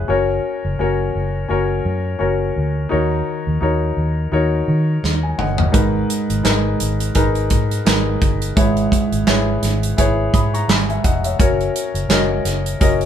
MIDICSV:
0, 0, Header, 1, 4, 480
1, 0, Start_track
1, 0, Key_signature, 5, "minor"
1, 0, Tempo, 706714
1, 62, Time_signature, 4, 2, 24, 8
1, 8867, End_track
2, 0, Start_track
2, 0, Title_t, "Grand piano"
2, 0, Program_c, 0, 0
2, 0, Control_c, 0, 64, 127
2, 0, Note_on_c, 0, 61, 58
2, 0, Note_on_c, 0, 64, 55
2, 0, Note_on_c, 0, 68, 60
2, 0, Note_on_c, 0, 71, 70
2, 55, Note_off_c, 0, 61, 0
2, 55, Note_on_c, 0, 61, 72
2, 55, Note_on_c, 0, 66, 60
2, 60, Note_on_c, 0, 70, 61
2, 66, Note_on_c, 0, 73, 72
2, 71, Control_c, 0, 64, 0
2, 72, Note_off_c, 0, 71, 0
2, 76, Note_off_c, 0, 64, 0
2, 77, Note_off_c, 0, 68, 0
2, 178, Control_c, 0, 64, 127
2, 503, Note_off_c, 0, 61, 0
2, 503, Note_off_c, 0, 66, 0
2, 505, Note_off_c, 0, 70, 0
2, 509, Note_off_c, 0, 73, 0
2, 537, Note_on_c, 0, 61, 70
2, 541, Note_on_c, 0, 66, 60
2, 547, Note_on_c, 0, 70, 55
2, 550, Note_on_c, 0, 73, 71
2, 984, Note_off_c, 0, 61, 0
2, 986, Note_off_c, 0, 66, 0
2, 989, Note_off_c, 0, 70, 0
2, 990, Note_off_c, 0, 73, 0
2, 1008, Note_on_c, 0, 61, 70
2, 1014, Note_on_c, 0, 66, 62
2, 1018, Note_on_c, 0, 70, 68
2, 1023, Note_on_c, 0, 73, 75
2, 1459, Note_off_c, 0, 61, 0
2, 1462, Note_off_c, 0, 66, 0
2, 1464, Note_off_c, 0, 70, 0
2, 1467, Note_off_c, 0, 73, 0
2, 1486, Note_on_c, 0, 61, 65
2, 1489, Note_on_c, 0, 66, 59
2, 1496, Note_on_c, 0, 70, 54
2, 1498, Note_on_c, 0, 73, 69
2, 1938, Note_off_c, 0, 61, 0
2, 1939, Note_off_c, 0, 66, 0
2, 1943, Note_off_c, 0, 70, 0
2, 1944, Note_off_c, 0, 73, 0
2, 1965, Note_on_c, 0, 63, 72
2, 1970, Note_on_c, 0, 66, 64
2, 1975, Note_on_c, 0, 51, 54
2, 1975, Note_on_c, 0, 70, 60
2, 1979, Note_on_c, 0, 73, 72
2, 1990, Control_c, 0, 64, 0
2, 2088, Control_c, 0, 64, 127
2, 2417, Note_off_c, 0, 63, 0
2, 2420, Note_off_c, 0, 66, 0
2, 2422, Note_off_c, 0, 70, 0
2, 2424, Note_off_c, 0, 73, 0
2, 2449, Note_on_c, 0, 63, 64
2, 2455, Note_on_c, 0, 66, 55
2, 2461, Note_on_c, 0, 70, 58
2, 2464, Note_on_c, 0, 73, 71
2, 2670, Note_off_c, 0, 51, 0
2, 2899, Note_off_c, 0, 63, 0
2, 2902, Note_off_c, 0, 66, 0
2, 2905, Note_off_c, 0, 70, 0
2, 2906, Note_off_c, 0, 73, 0
2, 2932, Note_on_c, 0, 63, 69
2, 2935, Note_on_c, 0, 66, 58
2, 2939, Note_on_c, 0, 70, 60
2, 2943, Note_on_c, 0, 73, 76
2, 3380, Note_off_c, 0, 63, 0
2, 3382, Note_off_c, 0, 66, 0
2, 3384, Note_off_c, 0, 70, 0
2, 3386, Note_off_c, 0, 73, 0
2, 3554, Note_on_c, 0, 80, 51
2, 3654, Note_off_c, 0, 80, 0
2, 3658, Note_on_c, 0, 78, 57
2, 3662, Note_on_c, 0, 75, 48
2, 3773, Note_off_c, 0, 75, 0
2, 3783, Note_on_c, 0, 75, 52
2, 3786, Note_off_c, 0, 78, 0
2, 3883, Note_on_c, 0, 63, 64
2, 3886, Note_on_c, 0, 68, 54
2, 3888, Note_on_c, 0, 44, 57
2, 3889, Note_on_c, 0, 70, 63
2, 3895, Note_on_c, 0, 71, 72
2, 3908, Control_c, 0, 64, 0
2, 4016, Note_off_c, 0, 75, 0
2, 4029, Control_c, 0, 64, 127
2, 4336, Note_off_c, 0, 63, 0
2, 4337, Note_off_c, 0, 68, 0
2, 4339, Note_off_c, 0, 70, 0
2, 4342, Note_off_c, 0, 71, 0
2, 4370, Note_on_c, 0, 63, 63
2, 4375, Note_on_c, 0, 68, 54
2, 4378, Note_on_c, 0, 70, 57
2, 4381, Note_on_c, 0, 71, 69
2, 4586, Note_off_c, 0, 44, 0
2, 4819, Note_off_c, 0, 63, 0
2, 4821, Note_off_c, 0, 68, 0
2, 4823, Note_off_c, 0, 70, 0
2, 4824, Note_off_c, 0, 71, 0
2, 4854, Note_on_c, 0, 63, 66
2, 4857, Note_on_c, 0, 68, 60
2, 4860, Note_on_c, 0, 70, 63
2, 4865, Note_on_c, 0, 71, 70
2, 5301, Note_off_c, 0, 63, 0
2, 5302, Note_off_c, 0, 68, 0
2, 5304, Note_off_c, 0, 70, 0
2, 5306, Note_off_c, 0, 71, 0
2, 5334, Note_on_c, 0, 63, 62
2, 5340, Note_on_c, 0, 68, 58
2, 5343, Note_on_c, 0, 70, 59
2, 5346, Note_on_c, 0, 71, 71
2, 5781, Note_off_c, 0, 63, 0
2, 5784, Note_off_c, 0, 68, 0
2, 5785, Note_off_c, 0, 70, 0
2, 5787, Note_off_c, 0, 71, 0
2, 5814, Note_on_c, 0, 64, 68
2, 5818, Note_on_c, 0, 44, 55
2, 5819, Note_on_c, 0, 68, 61
2, 5823, Note_on_c, 0, 71, 59
2, 5825, Note_on_c, 0, 73, 72
2, 5828, Control_c, 0, 64, 0
2, 5928, Control_c, 0, 64, 127
2, 6261, Note_off_c, 0, 64, 0
2, 6263, Note_off_c, 0, 68, 0
2, 6265, Note_off_c, 0, 71, 0
2, 6266, Note_off_c, 0, 73, 0
2, 6294, Note_on_c, 0, 64, 62
2, 6300, Note_on_c, 0, 68, 62
2, 6302, Note_on_c, 0, 71, 60
2, 6304, Note_on_c, 0, 73, 70
2, 6511, Note_off_c, 0, 44, 0
2, 6741, Note_off_c, 0, 64, 0
2, 6744, Note_off_c, 0, 68, 0
2, 6745, Note_off_c, 0, 71, 0
2, 6746, Note_off_c, 0, 73, 0
2, 6772, Note_on_c, 0, 64, 67
2, 6777, Note_on_c, 0, 68, 68
2, 6783, Note_on_c, 0, 71, 62
2, 6785, Note_on_c, 0, 73, 80
2, 7021, Note_off_c, 0, 73, 0
2, 7022, Note_on_c, 0, 87, 50
2, 7028, Note_on_c, 0, 83, 46
2, 7148, Note_off_c, 0, 87, 0
2, 7151, Note_off_c, 0, 83, 0
2, 7157, Note_on_c, 0, 85, 56
2, 7160, Note_on_c, 0, 82, 50
2, 7220, Note_off_c, 0, 64, 0
2, 7222, Note_off_c, 0, 68, 0
2, 7225, Note_off_c, 0, 71, 0
2, 7255, Note_off_c, 0, 85, 0
2, 7257, Note_off_c, 0, 82, 0
2, 7259, Note_on_c, 0, 83, 53
2, 7261, Note_on_c, 0, 80, 43
2, 7384, Note_off_c, 0, 80, 0
2, 7386, Note_off_c, 0, 83, 0
2, 7395, Note_on_c, 0, 80, 52
2, 7397, Note_on_c, 0, 76, 43
2, 7494, Note_off_c, 0, 80, 0
2, 7495, Note_off_c, 0, 76, 0
2, 7498, Note_on_c, 0, 78, 54
2, 7506, Note_on_c, 0, 75, 49
2, 7626, Note_off_c, 0, 78, 0
2, 7629, Note_off_c, 0, 75, 0
2, 7635, Note_on_c, 0, 76, 56
2, 7640, Note_on_c, 0, 73, 46
2, 7735, Note_on_c, 0, 61, 69
2, 7739, Note_off_c, 0, 73, 0
2, 7741, Note_on_c, 0, 66, 63
2, 7745, Note_on_c, 0, 70, 60
2, 7747, Control_c, 0, 64, 0
2, 7749, Note_on_c, 0, 73, 69
2, 7852, Control_c, 0, 64, 127
2, 7861, Note_off_c, 0, 76, 0
2, 8181, Note_off_c, 0, 61, 0
2, 8184, Note_off_c, 0, 66, 0
2, 8186, Note_off_c, 0, 70, 0
2, 8188, Note_off_c, 0, 73, 0
2, 8212, Note_on_c, 0, 61, 66
2, 8218, Note_on_c, 0, 66, 61
2, 8221, Note_on_c, 0, 70, 62
2, 8225, Note_on_c, 0, 75, 72
2, 8660, Note_off_c, 0, 61, 0
2, 8662, Note_off_c, 0, 66, 0
2, 8664, Note_off_c, 0, 70, 0
2, 8666, Note_off_c, 0, 75, 0
2, 8696, Note_on_c, 0, 61, 65
2, 8700, Note_on_c, 0, 66, 59
2, 8703, Note_on_c, 0, 70, 65
2, 8707, Note_on_c, 0, 75, 78
2, 8867, Note_off_c, 0, 61, 0
2, 8867, Note_off_c, 0, 66, 0
2, 8867, Note_off_c, 0, 70, 0
2, 8867, Note_off_c, 0, 75, 0
2, 8867, End_track
3, 0, Start_track
3, 0, Title_t, "Fingered electric bass"
3, 0, Program_c, 1, 33
3, 62, Note_on_c, 1, 30, 81
3, 258, Note_off_c, 1, 30, 0
3, 439, Note_on_c, 1, 30, 76
3, 524, Note_off_c, 1, 30, 0
3, 541, Note_on_c, 1, 30, 88
3, 737, Note_off_c, 1, 30, 0
3, 783, Note_on_c, 1, 30, 69
3, 979, Note_off_c, 1, 30, 0
3, 1022, Note_on_c, 1, 30, 83
3, 1218, Note_off_c, 1, 30, 0
3, 1258, Note_on_c, 1, 42, 94
3, 1456, Note_off_c, 1, 42, 0
3, 1499, Note_on_c, 1, 30, 73
3, 1696, Note_off_c, 1, 30, 0
3, 1741, Note_on_c, 1, 38, 72
3, 1937, Note_off_c, 1, 38, 0
3, 1985, Note_on_c, 1, 39, 74
3, 2179, Note_off_c, 1, 39, 0
3, 2357, Note_on_c, 1, 39, 66
3, 2442, Note_off_c, 1, 39, 0
3, 2456, Note_on_c, 1, 39, 81
3, 2654, Note_off_c, 1, 39, 0
3, 2695, Note_on_c, 1, 39, 74
3, 2894, Note_off_c, 1, 39, 0
3, 2935, Note_on_c, 1, 39, 74
3, 3133, Note_off_c, 1, 39, 0
3, 3178, Note_on_c, 1, 51, 95
3, 3375, Note_off_c, 1, 51, 0
3, 3419, Note_on_c, 1, 39, 66
3, 3616, Note_off_c, 1, 39, 0
3, 3656, Note_on_c, 1, 31, 72
3, 3854, Note_off_c, 1, 31, 0
3, 3896, Note_on_c, 1, 32, 79
3, 4094, Note_off_c, 1, 32, 0
3, 4278, Note_on_c, 1, 32, 65
3, 4362, Note_off_c, 1, 32, 0
3, 4381, Note_on_c, 1, 32, 91
3, 4576, Note_off_c, 1, 32, 0
3, 4624, Note_on_c, 1, 32, 75
3, 4818, Note_off_c, 1, 32, 0
3, 4860, Note_on_c, 1, 32, 72
3, 5098, Note_on_c, 1, 44, 78
3, 5108, Note_off_c, 1, 32, 0
3, 5295, Note_off_c, 1, 44, 0
3, 5342, Note_on_c, 1, 32, 77
3, 5537, Note_off_c, 1, 32, 0
3, 5582, Note_on_c, 1, 31, 79
3, 5777, Note_off_c, 1, 31, 0
3, 5821, Note_on_c, 1, 32, 81
3, 6016, Note_off_c, 1, 32, 0
3, 6195, Note_on_c, 1, 32, 77
3, 6280, Note_off_c, 1, 32, 0
3, 6298, Note_on_c, 1, 32, 83
3, 6494, Note_off_c, 1, 32, 0
3, 6538, Note_on_c, 1, 32, 82
3, 6734, Note_off_c, 1, 32, 0
3, 6782, Note_on_c, 1, 32, 80
3, 6977, Note_off_c, 1, 32, 0
3, 7021, Note_on_c, 1, 44, 77
3, 7216, Note_off_c, 1, 44, 0
3, 7255, Note_on_c, 1, 32, 66
3, 7453, Note_off_c, 1, 32, 0
3, 7503, Note_on_c, 1, 29, 73
3, 7697, Note_off_c, 1, 29, 0
3, 7741, Note_on_c, 1, 30, 83
3, 7936, Note_off_c, 1, 30, 0
3, 8111, Note_on_c, 1, 30, 69
3, 8198, Note_off_c, 1, 30, 0
3, 8210, Note_on_c, 1, 30, 88
3, 8410, Note_off_c, 1, 30, 0
3, 8455, Note_on_c, 1, 30, 74
3, 8653, Note_off_c, 1, 30, 0
3, 8701, Note_on_c, 1, 30, 77
3, 8867, Note_off_c, 1, 30, 0
3, 8867, End_track
4, 0, Start_track
4, 0, Title_t, "Drums"
4, 3423, Note_on_c, 9, 38, 49
4, 3491, Note_off_c, 9, 38, 0
4, 3659, Note_on_c, 9, 45, 70
4, 3727, Note_off_c, 9, 45, 0
4, 3791, Note_on_c, 9, 43, 76
4, 3859, Note_off_c, 9, 43, 0
4, 3898, Note_on_c, 9, 36, 95
4, 3899, Note_on_c, 9, 42, 84
4, 3966, Note_off_c, 9, 36, 0
4, 3967, Note_off_c, 9, 42, 0
4, 4143, Note_on_c, 9, 42, 69
4, 4211, Note_off_c, 9, 42, 0
4, 4279, Note_on_c, 9, 42, 42
4, 4347, Note_off_c, 9, 42, 0
4, 4379, Note_on_c, 9, 42, 69
4, 4380, Note_on_c, 9, 38, 75
4, 4387, Note_on_c, 9, 39, 65
4, 4447, Note_off_c, 9, 38, 0
4, 4447, Note_off_c, 9, 42, 0
4, 4455, Note_off_c, 9, 39, 0
4, 4619, Note_on_c, 9, 42, 63
4, 4687, Note_off_c, 9, 42, 0
4, 4757, Note_on_c, 9, 42, 46
4, 4825, Note_off_c, 9, 42, 0
4, 4855, Note_on_c, 9, 42, 67
4, 4859, Note_on_c, 9, 36, 68
4, 4923, Note_off_c, 9, 42, 0
4, 4927, Note_off_c, 9, 36, 0
4, 4994, Note_on_c, 9, 42, 30
4, 5062, Note_off_c, 9, 42, 0
4, 5096, Note_on_c, 9, 42, 60
4, 5099, Note_on_c, 9, 36, 72
4, 5164, Note_off_c, 9, 42, 0
4, 5167, Note_off_c, 9, 36, 0
4, 5239, Note_on_c, 9, 42, 41
4, 5307, Note_off_c, 9, 42, 0
4, 5342, Note_on_c, 9, 42, 67
4, 5343, Note_on_c, 9, 38, 100
4, 5351, Note_on_c, 9, 39, 84
4, 5410, Note_off_c, 9, 42, 0
4, 5411, Note_off_c, 9, 38, 0
4, 5419, Note_off_c, 9, 39, 0
4, 5580, Note_on_c, 9, 42, 53
4, 5581, Note_on_c, 9, 36, 77
4, 5648, Note_off_c, 9, 42, 0
4, 5649, Note_off_c, 9, 36, 0
4, 5717, Note_on_c, 9, 42, 48
4, 5785, Note_off_c, 9, 42, 0
4, 5819, Note_on_c, 9, 36, 95
4, 5819, Note_on_c, 9, 42, 87
4, 5887, Note_off_c, 9, 36, 0
4, 5887, Note_off_c, 9, 42, 0
4, 5955, Note_on_c, 9, 42, 29
4, 6023, Note_off_c, 9, 42, 0
4, 6058, Note_on_c, 9, 36, 65
4, 6064, Note_on_c, 9, 42, 66
4, 6126, Note_off_c, 9, 36, 0
4, 6132, Note_off_c, 9, 42, 0
4, 6197, Note_on_c, 9, 42, 40
4, 6265, Note_off_c, 9, 42, 0
4, 6296, Note_on_c, 9, 38, 88
4, 6296, Note_on_c, 9, 42, 63
4, 6304, Note_on_c, 9, 39, 64
4, 6364, Note_off_c, 9, 38, 0
4, 6364, Note_off_c, 9, 42, 0
4, 6372, Note_off_c, 9, 39, 0
4, 6539, Note_on_c, 9, 42, 65
4, 6541, Note_on_c, 9, 38, 27
4, 6607, Note_off_c, 9, 42, 0
4, 6609, Note_off_c, 9, 38, 0
4, 6678, Note_on_c, 9, 42, 43
4, 6746, Note_off_c, 9, 42, 0
4, 6780, Note_on_c, 9, 42, 75
4, 6781, Note_on_c, 9, 36, 72
4, 6848, Note_off_c, 9, 42, 0
4, 6849, Note_off_c, 9, 36, 0
4, 7021, Note_on_c, 9, 36, 76
4, 7023, Note_on_c, 9, 42, 57
4, 7089, Note_off_c, 9, 36, 0
4, 7091, Note_off_c, 9, 42, 0
4, 7163, Note_on_c, 9, 42, 42
4, 7231, Note_off_c, 9, 42, 0
4, 7262, Note_on_c, 9, 42, 63
4, 7264, Note_on_c, 9, 38, 101
4, 7272, Note_on_c, 9, 39, 93
4, 7330, Note_off_c, 9, 42, 0
4, 7332, Note_off_c, 9, 38, 0
4, 7340, Note_off_c, 9, 39, 0
4, 7402, Note_on_c, 9, 42, 27
4, 7470, Note_off_c, 9, 42, 0
4, 7501, Note_on_c, 9, 36, 74
4, 7501, Note_on_c, 9, 42, 60
4, 7569, Note_off_c, 9, 36, 0
4, 7569, Note_off_c, 9, 42, 0
4, 7637, Note_on_c, 9, 42, 47
4, 7705, Note_off_c, 9, 42, 0
4, 7740, Note_on_c, 9, 36, 98
4, 7741, Note_on_c, 9, 42, 88
4, 7808, Note_off_c, 9, 36, 0
4, 7809, Note_off_c, 9, 42, 0
4, 7883, Note_on_c, 9, 42, 28
4, 7951, Note_off_c, 9, 42, 0
4, 7986, Note_on_c, 9, 42, 65
4, 8054, Note_off_c, 9, 42, 0
4, 8118, Note_on_c, 9, 42, 43
4, 8186, Note_off_c, 9, 42, 0
4, 8217, Note_on_c, 9, 38, 82
4, 8217, Note_on_c, 9, 42, 66
4, 8225, Note_on_c, 9, 39, 58
4, 8285, Note_off_c, 9, 38, 0
4, 8285, Note_off_c, 9, 42, 0
4, 8293, Note_off_c, 9, 39, 0
4, 8459, Note_on_c, 9, 42, 63
4, 8460, Note_on_c, 9, 38, 28
4, 8526, Note_off_c, 9, 42, 0
4, 8528, Note_off_c, 9, 38, 0
4, 8599, Note_on_c, 9, 42, 43
4, 8667, Note_off_c, 9, 42, 0
4, 8700, Note_on_c, 9, 42, 68
4, 8701, Note_on_c, 9, 36, 79
4, 8768, Note_off_c, 9, 42, 0
4, 8769, Note_off_c, 9, 36, 0
4, 8836, Note_on_c, 9, 42, 29
4, 8867, Note_off_c, 9, 42, 0
4, 8867, End_track
0, 0, End_of_file